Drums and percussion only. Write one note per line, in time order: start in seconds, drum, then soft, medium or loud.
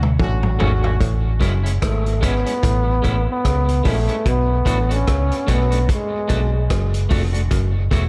0.03 mid tom medium
0.20 kick loud
0.20 mid tom medium
0.43 mid tom medium
0.60 floor tom loud
0.84 floor tom medium
1.01 kick loud
1.01 closed hi-hat medium
1.41 kick medium
1.41 closed hi-hat medium
1.66 closed hi-hat medium
1.82 kick loud
1.82 cross-stick loud
1.82 closed hi-hat medium
2.06 closed hi-hat medium
2.23 kick medium
2.23 closed hi-hat medium
2.46 closed hi-hat medium
2.63 kick loud
2.63 closed hi-hat medium
3.04 kick medium
3.04 closed hi-hat medium
3.45 kick medium
3.45 cross-stick medium
3.45 closed hi-hat medium
3.69 closed hi-hat medium
3.85 kick medium
3.85 open hi-hat medium
4.09 closed hi-hat medium
4.26 kick loud
4.26 closed hi-hat medium
4.66 kick medium
4.66 closed hi-hat medium
4.91 closed hi-hat medium
5.07 kick loud
5.07 cross-stick loud
5.07 closed hi-hat medium
5.31 closed hi-hat medium
5.48 kick medium
5.48 closed hi-hat medium
5.72 closed hi-hat medium
5.89 kick loud
5.89 closed hi-hat loud
6.29 kick medium
6.29 closed hi-hat medium
6.70 kick loud
6.70 cross-stick loud
6.70 closed hi-hat medium
6.94 closed hi-hat medium
7.10 kick loud
7.10 open hi-hat medium
7.34 closed hi-hat medium
7.51 kick medium
7.51 closed hi-hat medium
7.91 kick medium
7.91 closed hi-hat medium